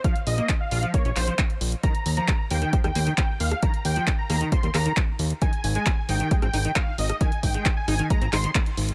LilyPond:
<<
  \new Staff \with { instrumentName = "Supersaw synth" } { \time 4/4 \key ees \mixolydian \tempo 4 = 134 f''8 ees''8 r16 f''8 r16 des''8 c''8 r4 | bes''8 r16 bes''8 r16 g''8 r16 g''8 r16 g''8 f''8 | bes''8 g''8 r16 bes''8 r16 c'''8 bes''8 r4 | aes''8 r16 aes''8 r16 g''8 r16 g''8 r16 f''8 ees''8 |
aes''8 g''8 r16 aes''8 r16 bes''8 c'''8 r4 | }
  \new Staff \with { instrumentName = "Acid bass" } { \clef bass \time 4/4 \key ees \mixolydian f16 r8 bes16 r8 f'16 f16 bes16 des'16 f'16 f16 bes16 r8. | ees16 r8 f16 g16 r16 bes16 ees16 r16 g16 bes16 ees16 f16 r8. | ees16 r8 f16 g16 r16 bes16 ees16 r16 g16 bes16 ees16 r4 | ees16 r8 aes16 r8 ees'16 ees16 aes16 c'16 ees'16 ees16 aes16 r8. |
ees16 r8 aes16 c'16 r16 ees'16 ees16 aes16 c'16 ees'16 ees16 aes16 r8. | }
  \new Staff \with { instrumentName = "Analog synth bass" } { \clef bass \time 4/4 \key ees \mixolydian r8 bes,,16 r8. bes,,16 r8 bes,,16 bes,,16 r8. bes,,16 r16 | r8 ees,16 r8. ees,16 r8 ees,16 ees,16 r8. ees,16 r16 | r8 ees,16 r8. ees,16 r8 ees,16 ees,16 r8. ees,16 r16 | r8 aes,,16 r8. aes,,16 r8 aes,,16 aes,,16 r8. aes,,16 r16 |
r8 aes,,16 r8. aes,,16 r8 aes,,16 aes,,16 r8. aes,,16 r16 | }
  \new DrumStaff \with { instrumentName = "Drums" } \drummode { \time 4/4 <hh bd>16 hh16 hho16 hh16 <hc hh bd>8 hho16 hh16 <hh bd>16 hh16 <hc hho>16 hh16 <hc hh bd>16 hh16 hho16 hh16 | <hh bd>16 hh16 hho16 hh16 <hc hh bd>8 hho16 hh16 <hh bd>16 <hh ss>16 hho16 hh16 <hc hh bd>8 hho16 <hh ss>16 | <hh bd>16 hh16 hho16 hh16 <hc hh bd>8 <hho ss>16 hh16 <hh bd>16 hh16 <hc hho ss>16 hh16 <hc hh bd>8 hho16 hh16 | <hh bd>16 hh16 hho16 hh16 <hc hh bd>8 hho16 hh16 <hh bd>16 <hh ss>16 hho16 hh16 <hc hh bd>8 hho16 <hh ss>16 |
<hh bd>16 hh16 <hho bd>16 hh16 <hc hh bd>8 <hho ss>16 hh16 <hh bd>16 hh16 <hc hho ss>16 hh16 <hc hh bd>16 hh16 hho16 hh16 | }
>>